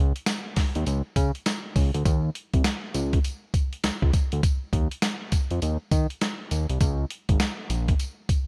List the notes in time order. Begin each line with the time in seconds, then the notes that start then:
Already playing: C#2
0.16 closed hi-hat
0.26 snare, closed hi-hat, tambourine
0.56 D#2, kick, snare, open hi-hat, tambourine
0.75 D#2, closed hi-hat
0.86 C#2, closed hi-hat, tambourine
1.16 C#3, kick, closed hi-hat, tambourine
1.35 closed hi-hat
1.46 snare, closed hi-hat, tambourine
1.76 C#2, kick, open hi-hat, tambourine
1.94 D2, closed hi-hat
2.05 D#2, kick, closed hi-hat, tambourine
2.35 closed hi-hat
2.54 C2, kick, closed hi-hat
2.64 snare, closed hi-hat, tambourine
2.94 C#2, closed hi-hat, tambourine
3.13 kick, closed hi-hat
3.24 closed hi-hat, tambourine
3.54 kick, closed hi-hat, tambourine
3.73 closed hi-hat
3.84 C#2, snare, closed hi-hat, tambourine
4.02 C#2, kick
4.13 kick, closed hi-hat, tambourine
4.32 D2, closed hi-hat
4.43 kick, closed hi-hat, tambourine
4.73 D#2, kick, closed hi-hat
4.91 closed hi-hat
5.02 snare, closed hi-hat, tambourine
5.32 F2, kick, closed hi-hat, tambourine
5.51 F2, closed hi-hat
5.62 D#2, closed hi-hat, tambourine
5.91 D#3, kick, closed hi-hat, tambourine
6.10 closed hi-hat
6.21 snare, closed hi-hat, tambourine
6.51 D#2, closed hi-hat, tambourine
6.70 C2, closed hi-hat
6.81 C#2, kick, closed hi-hat, tambourine
7.10 closed hi-hat
7.29 G#1, kick, closed hi-hat
7.40 snare, closed hi-hat, tambourine
7.70 A#1, closed hi-hat, tambourine
7.88 kick, closed hi-hat
7.99 closed hi-hat, tambourine
8.29 kick, closed hi-hat, tambourine